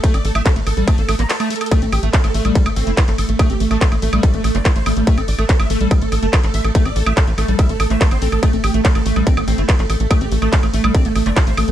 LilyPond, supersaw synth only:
\new Staff \with { instrumentName = "Supersaw synth" } { \time 4/4 \key a \phrygian \tempo 4 = 143 a'16 d''16 a'16 e''16 a'16 r16 a'16 a'16 a''16 a'16 a'16 bes''16 a'16 a''16 a'16 a'16 | a'16 a16 g'16 a16 a16 a'16 a16 a16 r16 a16 a16 e'16 a16 a16 a'16 a16 | a16 g'16 a16 a'16 a16 r16 a16 a16 d''16 a16 a16 d''16 a16 c''16 a16 a16 | e''16 a'16 d''16 a'16 a'16 e''16 a'16 a'16 r16 a'16 a'16 a'16 a'16 a'16 e''16 a'16 |
a'16 d''16 a'16 e''16 a'16 r16 a'16 a'16 e''16 a'16 a'16 e''16 a'16 c''16 a'16 a'16 | a'16 a16 g'16 a16 a16 a'16 a16 a16 r16 a16 a16 e'16 a16 a16 a'16 a16 | a16 g'16 a16 a'16 a16 r16 a16 a16 d''16 a16 a16 d''16 a16 c''16 a16 a16 | }